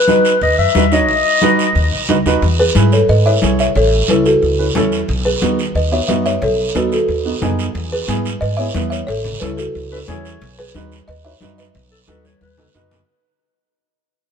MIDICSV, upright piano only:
0, 0, Header, 1, 2, 480
1, 0, Start_track
1, 0, Tempo, 333333
1, 1562, Time_signature, 4, 2, 24, 8
1, 20606, End_track
2, 0, Start_track
2, 0, Title_t, "Upright piano"
2, 0, Program_c, 0, 0
2, 112, Note_on_c, 0, 63, 64
2, 119, Note_on_c, 0, 66, 56
2, 126, Note_on_c, 0, 71, 71
2, 452, Note_off_c, 0, 63, 0
2, 455, Note_off_c, 0, 66, 0
2, 459, Note_off_c, 0, 71, 0
2, 1086, Note_on_c, 0, 63, 61
2, 1090, Note_on_c, 0, 66, 58
2, 1094, Note_on_c, 0, 71, 64
2, 1168, Note_off_c, 0, 63, 0
2, 1169, Note_off_c, 0, 66, 0
2, 1172, Note_off_c, 0, 71, 0
2, 1323, Note_on_c, 0, 63, 66
2, 1328, Note_on_c, 0, 66, 53
2, 1335, Note_on_c, 0, 73, 70
2, 1575, Note_off_c, 0, 63, 0
2, 1577, Note_off_c, 0, 66, 0
2, 1581, Note_off_c, 0, 73, 0
2, 2042, Note_on_c, 0, 63, 79
2, 2049, Note_on_c, 0, 66, 70
2, 2056, Note_on_c, 0, 71, 83
2, 2379, Note_off_c, 0, 63, 0
2, 2382, Note_off_c, 0, 66, 0
2, 2386, Note_off_c, 0, 71, 0
2, 3008, Note_on_c, 0, 63, 80
2, 3014, Note_on_c, 0, 66, 69
2, 3021, Note_on_c, 0, 71, 74
2, 3090, Note_off_c, 0, 63, 0
2, 3093, Note_off_c, 0, 66, 0
2, 3097, Note_off_c, 0, 71, 0
2, 3251, Note_on_c, 0, 63, 74
2, 3258, Note_on_c, 0, 66, 64
2, 3263, Note_on_c, 0, 71, 86
2, 3488, Note_off_c, 0, 63, 0
2, 3492, Note_off_c, 0, 66, 0
2, 3494, Note_off_c, 0, 71, 0
2, 3969, Note_on_c, 0, 64, 66
2, 3974, Note_on_c, 0, 68, 63
2, 3981, Note_on_c, 0, 71, 78
2, 4220, Note_off_c, 0, 64, 0
2, 4222, Note_off_c, 0, 68, 0
2, 4226, Note_off_c, 0, 71, 0
2, 4686, Note_on_c, 0, 64, 63
2, 4694, Note_on_c, 0, 68, 54
2, 4696, Note_on_c, 0, 71, 62
2, 4770, Note_off_c, 0, 64, 0
2, 4774, Note_off_c, 0, 68, 0
2, 4775, Note_off_c, 0, 71, 0
2, 4927, Note_on_c, 0, 64, 65
2, 4928, Note_on_c, 0, 68, 59
2, 4938, Note_on_c, 0, 73, 73
2, 5263, Note_off_c, 0, 64, 0
2, 5263, Note_off_c, 0, 68, 0
2, 5268, Note_off_c, 0, 73, 0
2, 5885, Note_on_c, 0, 61, 68
2, 5893, Note_on_c, 0, 64, 68
2, 5901, Note_on_c, 0, 69, 70
2, 6138, Note_off_c, 0, 61, 0
2, 6142, Note_off_c, 0, 64, 0
2, 6145, Note_off_c, 0, 69, 0
2, 6600, Note_on_c, 0, 61, 55
2, 6605, Note_on_c, 0, 64, 49
2, 6609, Note_on_c, 0, 71, 63
2, 6687, Note_off_c, 0, 61, 0
2, 6689, Note_off_c, 0, 64, 0
2, 6692, Note_off_c, 0, 71, 0
2, 6843, Note_on_c, 0, 61, 90
2, 6849, Note_on_c, 0, 64, 73
2, 6854, Note_on_c, 0, 69, 96
2, 7180, Note_off_c, 0, 61, 0
2, 7183, Note_off_c, 0, 64, 0
2, 7186, Note_off_c, 0, 69, 0
2, 7793, Note_on_c, 0, 59, 71
2, 7796, Note_on_c, 0, 63, 60
2, 7803, Note_on_c, 0, 66, 74
2, 8051, Note_off_c, 0, 59, 0
2, 8053, Note_off_c, 0, 63, 0
2, 8056, Note_off_c, 0, 66, 0
2, 8515, Note_on_c, 0, 59, 63
2, 8521, Note_on_c, 0, 63, 46
2, 8529, Note_on_c, 0, 66, 55
2, 8604, Note_off_c, 0, 59, 0
2, 8607, Note_off_c, 0, 63, 0
2, 8611, Note_off_c, 0, 66, 0
2, 8762, Note_on_c, 0, 59, 73
2, 8765, Note_on_c, 0, 63, 63
2, 8772, Note_on_c, 0, 66, 75
2, 9099, Note_off_c, 0, 59, 0
2, 9101, Note_off_c, 0, 63, 0
2, 9104, Note_off_c, 0, 66, 0
2, 9714, Note_on_c, 0, 59, 67
2, 9721, Note_on_c, 0, 63, 62
2, 9728, Note_on_c, 0, 69, 77
2, 9971, Note_off_c, 0, 59, 0
2, 9974, Note_off_c, 0, 63, 0
2, 9978, Note_off_c, 0, 69, 0
2, 10443, Note_on_c, 0, 59, 62
2, 10445, Note_on_c, 0, 63, 52
2, 10455, Note_on_c, 0, 66, 55
2, 10527, Note_off_c, 0, 59, 0
2, 10528, Note_off_c, 0, 63, 0
2, 10533, Note_off_c, 0, 66, 0
2, 10678, Note_on_c, 0, 59, 79
2, 10687, Note_on_c, 0, 63, 70
2, 10690, Note_on_c, 0, 68, 81
2, 11016, Note_off_c, 0, 59, 0
2, 11021, Note_off_c, 0, 63, 0
2, 11022, Note_off_c, 0, 68, 0
2, 11630, Note_on_c, 0, 59, 68
2, 11638, Note_on_c, 0, 64, 60
2, 11642, Note_on_c, 0, 68, 77
2, 11888, Note_off_c, 0, 59, 0
2, 11892, Note_off_c, 0, 64, 0
2, 11894, Note_off_c, 0, 68, 0
2, 12362, Note_on_c, 0, 59, 57
2, 12365, Note_on_c, 0, 64, 51
2, 12374, Note_on_c, 0, 68, 63
2, 12446, Note_off_c, 0, 59, 0
2, 12448, Note_off_c, 0, 64, 0
2, 12452, Note_off_c, 0, 68, 0
2, 12596, Note_on_c, 0, 59, 64
2, 12604, Note_on_c, 0, 64, 60
2, 12607, Note_on_c, 0, 71, 68
2, 12935, Note_off_c, 0, 59, 0
2, 12939, Note_off_c, 0, 64, 0
2, 12940, Note_off_c, 0, 71, 0
2, 13555, Note_on_c, 0, 61, 70
2, 13559, Note_on_c, 0, 64, 62
2, 13566, Note_on_c, 0, 69, 83
2, 13810, Note_off_c, 0, 61, 0
2, 13812, Note_off_c, 0, 64, 0
2, 13816, Note_off_c, 0, 69, 0
2, 14275, Note_on_c, 0, 61, 58
2, 14286, Note_on_c, 0, 64, 58
2, 14290, Note_on_c, 0, 69, 64
2, 14362, Note_off_c, 0, 61, 0
2, 14367, Note_off_c, 0, 64, 0
2, 14370, Note_off_c, 0, 69, 0
2, 14520, Note_on_c, 0, 61, 77
2, 14525, Note_on_c, 0, 64, 81
2, 14529, Note_on_c, 0, 68, 83
2, 14857, Note_off_c, 0, 61, 0
2, 14859, Note_off_c, 0, 64, 0
2, 14861, Note_off_c, 0, 68, 0
2, 15480, Note_on_c, 0, 63, 72
2, 15485, Note_on_c, 0, 66, 62
2, 15491, Note_on_c, 0, 71, 84
2, 15732, Note_off_c, 0, 63, 0
2, 15735, Note_off_c, 0, 66, 0
2, 15738, Note_off_c, 0, 71, 0
2, 16193, Note_on_c, 0, 63, 60
2, 16201, Note_on_c, 0, 66, 56
2, 16205, Note_on_c, 0, 71, 64
2, 16281, Note_off_c, 0, 63, 0
2, 16285, Note_off_c, 0, 66, 0
2, 16287, Note_off_c, 0, 71, 0
2, 16435, Note_on_c, 0, 63, 72
2, 16439, Note_on_c, 0, 66, 61
2, 16445, Note_on_c, 0, 71, 73
2, 16774, Note_off_c, 0, 63, 0
2, 16776, Note_off_c, 0, 66, 0
2, 16778, Note_off_c, 0, 71, 0
2, 17387, Note_on_c, 0, 63, 73
2, 17394, Note_on_c, 0, 66, 76
2, 17398, Note_on_c, 0, 69, 93
2, 17646, Note_off_c, 0, 63, 0
2, 17649, Note_off_c, 0, 66, 0
2, 17651, Note_off_c, 0, 69, 0
2, 18109, Note_on_c, 0, 63, 67
2, 18116, Note_on_c, 0, 66, 55
2, 18121, Note_on_c, 0, 69, 75
2, 18198, Note_off_c, 0, 63, 0
2, 18202, Note_off_c, 0, 66, 0
2, 18205, Note_off_c, 0, 69, 0
2, 18352, Note_on_c, 0, 63, 85
2, 18358, Note_on_c, 0, 66, 71
2, 18364, Note_on_c, 0, 71, 78
2, 18692, Note_off_c, 0, 63, 0
2, 18695, Note_off_c, 0, 66, 0
2, 18698, Note_off_c, 0, 71, 0
2, 20606, End_track
0, 0, End_of_file